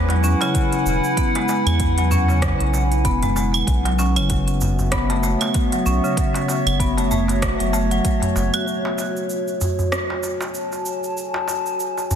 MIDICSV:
0, 0, Header, 1, 6, 480
1, 0, Start_track
1, 0, Key_signature, 3, "minor"
1, 0, Tempo, 625000
1, 902, Time_signature, 4, 2, 24, 8
1, 9334, End_track
2, 0, Start_track
2, 0, Title_t, "Ambient pad"
2, 0, Program_c, 0, 92
2, 0, Note_on_c, 0, 64, 93
2, 0, Note_on_c, 0, 68, 94
2, 0, Note_on_c, 0, 71, 77
2, 0, Note_on_c, 0, 78, 90
2, 0, Note_on_c, 0, 80, 83
2, 532, Note_off_c, 0, 68, 0
2, 2828, Note_on_c, 0, 59, 80
2, 3042, Note_on_c, 0, 66, 96
2, 3119, Note_on_c, 0, 73, 86
2, 3235, Note_on_c, 0, 76, 82
2, 3438, Note_off_c, 0, 64, 0
2, 3642, Note_off_c, 0, 80, 0
2, 3779, Note_off_c, 0, 78, 0
2, 4372, Note_off_c, 0, 71, 0
2, 7270, Note_on_c, 0, 80, 67
2, 7560, Note_on_c, 0, 81, 83
2, 7990, Note_off_c, 0, 59, 0
2, 8213, Note_off_c, 0, 76, 0
2, 9334, Note_off_c, 0, 66, 0
2, 9334, Note_off_c, 0, 73, 0
2, 9334, Note_off_c, 0, 80, 0
2, 9334, Note_off_c, 0, 81, 0
2, 9334, End_track
3, 0, Start_track
3, 0, Title_t, "Marimba"
3, 0, Program_c, 1, 12
3, 80, Note_on_c, 1, 54, 71
3, 172, Note_off_c, 1, 54, 0
3, 182, Note_on_c, 1, 61, 77
3, 312, Note_off_c, 1, 61, 0
3, 322, Note_on_c, 1, 49, 77
3, 786, Note_off_c, 1, 49, 0
3, 901, Note_on_c, 1, 59, 80
3, 1031, Note_off_c, 1, 59, 0
3, 1042, Note_on_c, 1, 56, 74
3, 1133, Note_off_c, 1, 56, 0
3, 1146, Note_on_c, 1, 56, 68
3, 1274, Note_off_c, 1, 56, 0
3, 1522, Note_on_c, 1, 54, 72
3, 1613, Note_off_c, 1, 54, 0
3, 1622, Note_on_c, 1, 61, 76
3, 1752, Note_off_c, 1, 61, 0
3, 1759, Note_on_c, 1, 49, 69
3, 2225, Note_off_c, 1, 49, 0
3, 2342, Note_on_c, 1, 59, 81
3, 2472, Note_off_c, 1, 59, 0
3, 2476, Note_on_c, 1, 56, 78
3, 2570, Note_off_c, 1, 56, 0
3, 2584, Note_on_c, 1, 56, 75
3, 2713, Note_off_c, 1, 56, 0
3, 2960, Note_on_c, 1, 54, 80
3, 3052, Note_off_c, 1, 54, 0
3, 3061, Note_on_c, 1, 61, 71
3, 3191, Note_off_c, 1, 61, 0
3, 3201, Note_on_c, 1, 49, 73
3, 3666, Note_off_c, 1, 49, 0
3, 3782, Note_on_c, 1, 59, 86
3, 3912, Note_off_c, 1, 59, 0
3, 3915, Note_on_c, 1, 57, 72
3, 4010, Note_off_c, 1, 57, 0
3, 4021, Note_on_c, 1, 57, 73
3, 4151, Note_off_c, 1, 57, 0
3, 4399, Note_on_c, 1, 54, 77
3, 4491, Note_off_c, 1, 54, 0
3, 4501, Note_on_c, 1, 61, 77
3, 4631, Note_off_c, 1, 61, 0
3, 4638, Note_on_c, 1, 49, 72
3, 5105, Note_off_c, 1, 49, 0
3, 5221, Note_on_c, 1, 59, 75
3, 5352, Note_off_c, 1, 59, 0
3, 5357, Note_on_c, 1, 57, 79
3, 5450, Note_off_c, 1, 57, 0
3, 5461, Note_on_c, 1, 57, 79
3, 5592, Note_off_c, 1, 57, 0
3, 5834, Note_on_c, 1, 54, 69
3, 5929, Note_off_c, 1, 54, 0
3, 5937, Note_on_c, 1, 57, 101
3, 6063, Note_off_c, 1, 57, 0
3, 6079, Note_on_c, 1, 54, 78
3, 6176, Note_off_c, 1, 54, 0
3, 6558, Note_on_c, 1, 66, 72
3, 6656, Note_off_c, 1, 66, 0
3, 9334, End_track
4, 0, Start_track
4, 0, Title_t, "Analog synth bass"
4, 0, Program_c, 2, 38
4, 0, Note_on_c, 2, 40, 79
4, 270, Note_off_c, 2, 40, 0
4, 659, Note_on_c, 2, 28, 79
4, 767, Note_off_c, 2, 28, 0
4, 1277, Note_on_c, 2, 40, 81
4, 1950, Note_off_c, 2, 40, 0
4, 2001, Note_on_c, 2, 35, 78
4, 2340, Note_on_c, 2, 28, 79
4, 2351, Note_off_c, 2, 35, 0
4, 2784, Note_off_c, 2, 28, 0
4, 2820, Note_on_c, 2, 35, 102
4, 3202, Note_on_c, 2, 30, 85
4, 3214, Note_off_c, 2, 35, 0
4, 4112, Note_off_c, 2, 30, 0
4, 4501, Note_on_c, 2, 35, 86
4, 4608, Note_off_c, 2, 35, 0
4, 5117, Note_on_c, 2, 30, 84
4, 5790, Note_off_c, 2, 30, 0
4, 5839, Note_on_c, 2, 30, 81
4, 6145, Note_off_c, 2, 30, 0
4, 6421, Note_on_c, 2, 30, 100
4, 6528, Note_off_c, 2, 30, 0
4, 9334, End_track
5, 0, Start_track
5, 0, Title_t, "Darbuka"
5, 66, Note_on_c, 9, 63, 72
5, 143, Note_off_c, 9, 63, 0
5, 176, Note_on_c, 9, 62, 54
5, 253, Note_off_c, 9, 62, 0
5, 313, Note_on_c, 9, 63, 76
5, 389, Note_off_c, 9, 63, 0
5, 556, Note_on_c, 9, 62, 46
5, 633, Note_off_c, 9, 62, 0
5, 1041, Note_on_c, 9, 63, 69
5, 1117, Note_off_c, 9, 63, 0
5, 1145, Note_on_c, 9, 63, 65
5, 1222, Note_off_c, 9, 63, 0
5, 1521, Note_on_c, 9, 62, 49
5, 1598, Note_off_c, 9, 62, 0
5, 1618, Note_on_c, 9, 64, 77
5, 1694, Note_off_c, 9, 64, 0
5, 1755, Note_on_c, 9, 62, 64
5, 1831, Note_off_c, 9, 62, 0
5, 2101, Note_on_c, 9, 62, 66
5, 2178, Note_off_c, 9, 62, 0
5, 2479, Note_on_c, 9, 62, 52
5, 2481, Note_on_c, 9, 64, 79
5, 2556, Note_off_c, 9, 62, 0
5, 2558, Note_off_c, 9, 64, 0
5, 2580, Note_on_c, 9, 63, 61
5, 2657, Note_off_c, 9, 63, 0
5, 2960, Note_on_c, 9, 63, 67
5, 3036, Note_off_c, 9, 63, 0
5, 3063, Note_on_c, 9, 63, 60
5, 3140, Note_off_c, 9, 63, 0
5, 3545, Note_on_c, 9, 64, 85
5, 3622, Note_off_c, 9, 64, 0
5, 3678, Note_on_c, 9, 64, 74
5, 3755, Note_off_c, 9, 64, 0
5, 3915, Note_on_c, 9, 63, 66
5, 3992, Note_off_c, 9, 63, 0
5, 4019, Note_on_c, 9, 62, 66
5, 4096, Note_off_c, 9, 62, 0
5, 4161, Note_on_c, 9, 63, 77
5, 4238, Note_off_c, 9, 63, 0
5, 4396, Note_on_c, 9, 62, 55
5, 4473, Note_off_c, 9, 62, 0
5, 4872, Note_on_c, 9, 63, 72
5, 4949, Note_off_c, 9, 63, 0
5, 4980, Note_on_c, 9, 63, 58
5, 5057, Note_off_c, 9, 63, 0
5, 5358, Note_on_c, 9, 62, 57
5, 5435, Note_off_c, 9, 62, 0
5, 5466, Note_on_c, 9, 64, 78
5, 5542, Note_off_c, 9, 64, 0
5, 5594, Note_on_c, 9, 62, 69
5, 5670, Note_off_c, 9, 62, 0
5, 5940, Note_on_c, 9, 62, 69
5, 6017, Note_off_c, 9, 62, 0
5, 6312, Note_on_c, 9, 64, 80
5, 6313, Note_on_c, 9, 62, 50
5, 6389, Note_off_c, 9, 64, 0
5, 6390, Note_off_c, 9, 62, 0
5, 6419, Note_on_c, 9, 63, 63
5, 6496, Note_off_c, 9, 63, 0
5, 6798, Note_on_c, 9, 63, 74
5, 6874, Note_off_c, 9, 63, 0
5, 6898, Note_on_c, 9, 63, 52
5, 6975, Note_off_c, 9, 63, 0
5, 7383, Note_on_c, 9, 64, 80
5, 7459, Note_off_c, 9, 64, 0
5, 7517, Note_on_c, 9, 64, 66
5, 7594, Note_off_c, 9, 64, 0
5, 7758, Note_on_c, 9, 63, 66
5, 7835, Note_off_c, 9, 63, 0
5, 7859, Note_on_c, 9, 62, 53
5, 7936, Note_off_c, 9, 62, 0
5, 7992, Note_on_c, 9, 63, 75
5, 8069, Note_off_c, 9, 63, 0
5, 8238, Note_on_c, 9, 62, 45
5, 8315, Note_off_c, 9, 62, 0
5, 8711, Note_on_c, 9, 63, 76
5, 8788, Note_off_c, 9, 63, 0
5, 8814, Note_on_c, 9, 63, 60
5, 8891, Note_off_c, 9, 63, 0
5, 9197, Note_on_c, 9, 62, 50
5, 9274, Note_off_c, 9, 62, 0
5, 9299, Note_on_c, 9, 64, 87
5, 9334, Note_off_c, 9, 64, 0
5, 9334, End_track
6, 0, Start_track
6, 0, Title_t, "Drums"
6, 76, Note_on_c, 9, 42, 43
6, 153, Note_off_c, 9, 42, 0
6, 183, Note_on_c, 9, 82, 74
6, 260, Note_off_c, 9, 82, 0
6, 318, Note_on_c, 9, 42, 29
6, 318, Note_on_c, 9, 75, 56
6, 320, Note_on_c, 9, 82, 33
6, 395, Note_off_c, 9, 42, 0
6, 395, Note_off_c, 9, 75, 0
6, 397, Note_off_c, 9, 82, 0
6, 421, Note_on_c, 9, 36, 107
6, 421, Note_on_c, 9, 42, 64
6, 423, Note_on_c, 9, 82, 45
6, 498, Note_off_c, 9, 36, 0
6, 498, Note_off_c, 9, 42, 0
6, 499, Note_off_c, 9, 82, 0
6, 556, Note_on_c, 9, 42, 39
6, 558, Note_on_c, 9, 82, 30
6, 633, Note_off_c, 9, 42, 0
6, 635, Note_off_c, 9, 82, 0
6, 662, Note_on_c, 9, 82, 74
6, 739, Note_off_c, 9, 82, 0
6, 799, Note_on_c, 9, 82, 33
6, 876, Note_off_c, 9, 82, 0
6, 900, Note_on_c, 9, 36, 92
6, 901, Note_on_c, 9, 42, 64
6, 903, Note_on_c, 9, 82, 43
6, 977, Note_off_c, 9, 36, 0
6, 978, Note_off_c, 9, 42, 0
6, 980, Note_off_c, 9, 82, 0
6, 1039, Note_on_c, 9, 42, 43
6, 1115, Note_off_c, 9, 42, 0
6, 1140, Note_on_c, 9, 82, 72
6, 1217, Note_off_c, 9, 82, 0
6, 1280, Note_on_c, 9, 42, 29
6, 1280, Note_on_c, 9, 75, 75
6, 1282, Note_on_c, 9, 82, 28
6, 1357, Note_off_c, 9, 42, 0
6, 1357, Note_off_c, 9, 75, 0
6, 1359, Note_off_c, 9, 82, 0
6, 1380, Note_on_c, 9, 42, 69
6, 1381, Note_on_c, 9, 36, 87
6, 1382, Note_on_c, 9, 82, 40
6, 1457, Note_off_c, 9, 42, 0
6, 1458, Note_off_c, 9, 36, 0
6, 1459, Note_off_c, 9, 82, 0
6, 1518, Note_on_c, 9, 42, 41
6, 1520, Note_on_c, 9, 82, 28
6, 1595, Note_off_c, 9, 42, 0
6, 1597, Note_off_c, 9, 82, 0
6, 1624, Note_on_c, 9, 82, 78
6, 1701, Note_off_c, 9, 82, 0
6, 1762, Note_on_c, 9, 82, 28
6, 1839, Note_off_c, 9, 82, 0
6, 1860, Note_on_c, 9, 37, 77
6, 1860, Note_on_c, 9, 42, 63
6, 1861, Note_on_c, 9, 36, 101
6, 1862, Note_on_c, 9, 82, 44
6, 1937, Note_off_c, 9, 37, 0
6, 1937, Note_off_c, 9, 42, 0
6, 1938, Note_off_c, 9, 36, 0
6, 1939, Note_off_c, 9, 82, 0
6, 2000, Note_on_c, 9, 42, 42
6, 2077, Note_off_c, 9, 42, 0
6, 2104, Note_on_c, 9, 82, 70
6, 2181, Note_off_c, 9, 82, 0
6, 2239, Note_on_c, 9, 42, 30
6, 2241, Note_on_c, 9, 82, 29
6, 2316, Note_off_c, 9, 42, 0
6, 2318, Note_off_c, 9, 82, 0
6, 2341, Note_on_c, 9, 36, 96
6, 2341, Note_on_c, 9, 42, 67
6, 2343, Note_on_c, 9, 82, 44
6, 2418, Note_off_c, 9, 36, 0
6, 2418, Note_off_c, 9, 42, 0
6, 2420, Note_off_c, 9, 82, 0
6, 2477, Note_on_c, 9, 42, 44
6, 2479, Note_on_c, 9, 82, 30
6, 2554, Note_off_c, 9, 42, 0
6, 2555, Note_off_c, 9, 82, 0
6, 2584, Note_on_c, 9, 82, 72
6, 2661, Note_off_c, 9, 82, 0
6, 2720, Note_on_c, 9, 75, 82
6, 2721, Note_on_c, 9, 82, 30
6, 2796, Note_off_c, 9, 75, 0
6, 2798, Note_off_c, 9, 82, 0
6, 2821, Note_on_c, 9, 36, 94
6, 2823, Note_on_c, 9, 42, 68
6, 2825, Note_on_c, 9, 82, 41
6, 2897, Note_off_c, 9, 36, 0
6, 2900, Note_off_c, 9, 42, 0
6, 2902, Note_off_c, 9, 82, 0
6, 2961, Note_on_c, 9, 42, 44
6, 3038, Note_off_c, 9, 42, 0
6, 3064, Note_on_c, 9, 82, 67
6, 3141, Note_off_c, 9, 82, 0
6, 3198, Note_on_c, 9, 42, 30
6, 3198, Note_on_c, 9, 75, 76
6, 3199, Note_on_c, 9, 82, 31
6, 3274, Note_off_c, 9, 42, 0
6, 3274, Note_off_c, 9, 75, 0
6, 3276, Note_off_c, 9, 82, 0
6, 3300, Note_on_c, 9, 42, 71
6, 3301, Note_on_c, 9, 36, 95
6, 3302, Note_on_c, 9, 82, 44
6, 3377, Note_off_c, 9, 42, 0
6, 3378, Note_off_c, 9, 36, 0
6, 3379, Note_off_c, 9, 82, 0
6, 3438, Note_on_c, 9, 42, 42
6, 3439, Note_on_c, 9, 82, 29
6, 3514, Note_off_c, 9, 42, 0
6, 3516, Note_off_c, 9, 82, 0
6, 3540, Note_on_c, 9, 82, 76
6, 3617, Note_off_c, 9, 82, 0
6, 3678, Note_on_c, 9, 82, 28
6, 3755, Note_off_c, 9, 82, 0
6, 3777, Note_on_c, 9, 37, 77
6, 3777, Note_on_c, 9, 42, 67
6, 3778, Note_on_c, 9, 82, 40
6, 3781, Note_on_c, 9, 36, 94
6, 3853, Note_off_c, 9, 37, 0
6, 3853, Note_off_c, 9, 42, 0
6, 3855, Note_off_c, 9, 82, 0
6, 3858, Note_off_c, 9, 36, 0
6, 3916, Note_on_c, 9, 42, 46
6, 3993, Note_off_c, 9, 42, 0
6, 4019, Note_on_c, 9, 82, 70
6, 4096, Note_off_c, 9, 82, 0
6, 4154, Note_on_c, 9, 42, 30
6, 4154, Note_on_c, 9, 75, 62
6, 4156, Note_on_c, 9, 82, 30
6, 4231, Note_off_c, 9, 42, 0
6, 4231, Note_off_c, 9, 75, 0
6, 4232, Note_off_c, 9, 82, 0
6, 4258, Note_on_c, 9, 42, 70
6, 4259, Note_on_c, 9, 82, 42
6, 4261, Note_on_c, 9, 36, 104
6, 4334, Note_off_c, 9, 42, 0
6, 4336, Note_off_c, 9, 82, 0
6, 4338, Note_off_c, 9, 36, 0
6, 4396, Note_on_c, 9, 42, 43
6, 4397, Note_on_c, 9, 82, 31
6, 4473, Note_off_c, 9, 42, 0
6, 4474, Note_off_c, 9, 82, 0
6, 4503, Note_on_c, 9, 82, 70
6, 4580, Note_off_c, 9, 82, 0
6, 4642, Note_on_c, 9, 82, 32
6, 4719, Note_off_c, 9, 82, 0
6, 4740, Note_on_c, 9, 36, 99
6, 4742, Note_on_c, 9, 42, 73
6, 4743, Note_on_c, 9, 82, 42
6, 4817, Note_off_c, 9, 36, 0
6, 4819, Note_off_c, 9, 42, 0
6, 4820, Note_off_c, 9, 82, 0
6, 4880, Note_on_c, 9, 42, 45
6, 4882, Note_on_c, 9, 82, 30
6, 4957, Note_off_c, 9, 42, 0
6, 4959, Note_off_c, 9, 82, 0
6, 4986, Note_on_c, 9, 82, 71
6, 5063, Note_off_c, 9, 82, 0
6, 5121, Note_on_c, 9, 42, 32
6, 5121, Note_on_c, 9, 75, 74
6, 5122, Note_on_c, 9, 82, 30
6, 5198, Note_off_c, 9, 42, 0
6, 5198, Note_off_c, 9, 75, 0
6, 5199, Note_off_c, 9, 82, 0
6, 5220, Note_on_c, 9, 36, 95
6, 5224, Note_on_c, 9, 42, 70
6, 5226, Note_on_c, 9, 82, 44
6, 5297, Note_off_c, 9, 36, 0
6, 5301, Note_off_c, 9, 42, 0
6, 5303, Note_off_c, 9, 82, 0
6, 5361, Note_on_c, 9, 42, 45
6, 5363, Note_on_c, 9, 82, 28
6, 5438, Note_off_c, 9, 42, 0
6, 5440, Note_off_c, 9, 82, 0
6, 5463, Note_on_c, 9, 82, 73
6, 5539, Note_off_c, 9, 82, 0
6, 5601, Note_on_c, 9, 42, 29
6, 5603, Note_on_c, 9, 82, 28
6, 5678, Note_off_c, 9, 42, 0
6, 5680, Note_off_c, 9, 82, 0
6, 5701, Note_on_c, 9, 36, 94
6, 5701, Note_on_c, 9, 37, 78
6, 5701, Note_on_c, 9, 42, 74
6, 5703, Note_on_c, 9, 82, 42
6, 5777, Note_off_c, 9, 36, 0
6, 5778, Note_off_c, 9, 37, 0
6, 5778, Note_off_c, 9, 42, 0
6, 5780, Note_off_c, 9, 82, 0
6, 5838, Note_on_c, 9, 42, 45
6, 5840, Note_on_c, 9, 82, 29
6, 5915, Note_off_c, 9, 42, 0
6, 5917, Note_off_c, 9, 82, 0
6, 5942, Note_on_c, 9, 82, 70
6, 6019, Note_off_c, 9, 82, 0
6, 6077, Note_on_c, 9, 42, 31
6, 6079, Note_on_c, 9, 82, 32
6, 6154, Note_off_c, 9, 42, 0
6, 6156, Note_off_c, 9, 82, 0
6, 6180, Note_on_c, 9, 36, 103
6, 6180, Note_on_c, 9, 42, 67
6, 6182, Note_on_c, 9, 82, 43
6, 6257, Note_off_c, 9, 36, 0
6, 6257, Note_off_c, 9, 42, 0
6, 6258, Note_off_c, 9, 82, 0
6, 6317, Note_on_c, 9, 42, 46
6, 6319, Note_on_c, 9, 82, 28
6, 6394, Note_off_c, 9, 42, 0
6, 6396, Note_off_c, 9, 82, 0
6, 6423, Note_on_c, 9, 82, 71
6, 6500, Note_off_c, 9, 82, 0
6, 6556, Note_on_c, 9, 42, 31
6, 6556, Note_on_c, 9, 75, 83
6, 6558, Note_on_c, 9, 82, 31
6, 6633, Note_off_c, 9, 42, 0
6, 6633, Note_off_c, 9, 75, 0
6, 6635, Note_off_c, 9, 82, 0
6, 6663, Note_on_c, 9, 82, 37
6, 6740, Note_off_c, 9, 82, 0
6, 6899, Note_on_c, 9, 82, 62
6, 6976, Note_off_c, 9, 82, 0
6, 7039, Note_on_c, 9, 82, 27
6, 7116, Note_off_c, 9, 82, 0
6, 7140, Note_on_c, 9, 82, 40
6, 7217, Note_off_c, 9, 82, 0
6, 7279, Note_on_c, 9, 82, 25
6, 7356, Note_off_c, 9, 82, 0
6, 7381, Note_on_c, 9, 82, 72
6, 7458, Note_off_c, 9, 82, 0
6, 7520, Note_on_c, 9, 82, 27
6, 7597, Note_off_c, 9, 82, 0
6, 7620, Note_on_c, 9, 37, 71
6, 7622, Note_on_c, 9, 82, 40
6, 7697, Note_off_c, 9, 37, 0
6, 7698, Note_off_c, 9, 82, 0
6, 7859, Note_on_c, 9, 82, 65
6, 7936, Note_off_c, 9, 82, 0
6, 7999, Note_on_c, 9, 82, 28
6, 8075, Note_off_c, 9, 82, 0
6, 8098, Note_on_c, 9, 82, 41
6, 8175, Note_off_c, 9, 82, 0
6, 8235, Note_on_c, 9, 82, 26
6, 8312, Note_off_c, 9, 82, 0
6, 8338, Note_on_c, 9, 82, 65
6, 8415, Note_off_c, 9, 82, 0
6, 8476, Note_on_c, 9, 82, 28
6, 8552, Note_off_c, 9, 82, 0
6, 8581, Note_on_c, 9, 82, 39
6, 8658, Note_off_c, 9, 82, 0
6, 8821, Note_on_c, 9, 82, 67
6, 8898, Note_off_c, 9, 82, 0
6, 8956, Note_on_c, 9, 82, 27
6, 9033, Note_off_c, 9, 82, 0
6, 9061, Note_on_c, 9, 82, 40
6, 9138, Note_off_c, 9, 82, 0
6, 9200, Note_on_c, 9, 82, 29
6, 9277, Note_off_c, 9, 82, 0
6, 9300, Note_on_c, 9, 82, 72
6, 9334, Note_off_c, 9, 82, 0
6, 9334, End_track
0, 0, End_of_file